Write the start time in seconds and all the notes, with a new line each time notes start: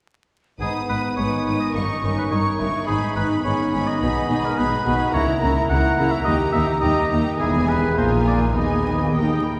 0.60 G#1 G#2 B3 D#4 G#4 B4 B5 D#6
0.89 G#1 G#2 D#4 B4 D#6
1.17 G#1 G#2 D#3 G#3 D#4 B4 C#5 D#6
1.45 G#1 G#2 B3 D#4 B4 D#6
1.60 D#5
1.73 G1 G2 A#3 C#4 D#4 A#4 C#6
2.02 G1 G2 C#4 D#4 A#4 C#6
2.18 B4
2.30 G1 G2 G3 D#4 A#4 C#5 C#6
2.58 G1 G2 A#3 D#4 E4 A#4 C#6
2.87 G#1 G#2 B3 D#4 G#4 B5
3.16 G#1 G#2 D#4 G#4 B4 B5
3.44 G#1 G#2 D#3 C#4 D#4 G#4 C#5 B5
3.72 G#1 G#2 G#3 D#4 G#4 B5
3.88 D#5
4.00 B1 B2 G#3 B3 D#4 G#4 G#5 B5
4.29 B1 B2 D#4 G#4 B5
4.45 A#4
4.57 B1 B2 B3 D#4 G#4 B4 B5
4.85 B1 B2 G#3 D#4 F#4 G#4 B5
5.13 C#2 C#3 A#3 E4 A#4 C#5 A#5
5.41 C#2 C#3 E4 A#4 A#5
5.69 C#2 C#3 C#4 E4 A#4 F#5 A#5
5.97 C#2 C#3 A#3 E4 A#4 A#5
6.11 E5
6.24 D#2 D#3 D#4 G4 D#5 A#5
6.53 D#2 D#4 G4 A#4 E5 A#5
6.81 D#2 G3 D#4 G4 D#5 A#5
7.11 D#2 D#4 G4 A#5
7.39 E1 E2 E3 B3 E4 G#4 G#5 B5
7.68 B3 G#4 B4
7.97 A#1 A#2 A#3 F4 C5 G#5 A#5
8.27 A#3 D5
8.55 D#2 D#3 B3 D#4 D#5 G#5 B5
8.85 B3 D#4
9.14 D#3 A#3 D#4 G4 G5 D#6
9.44 A#3 D#4 B5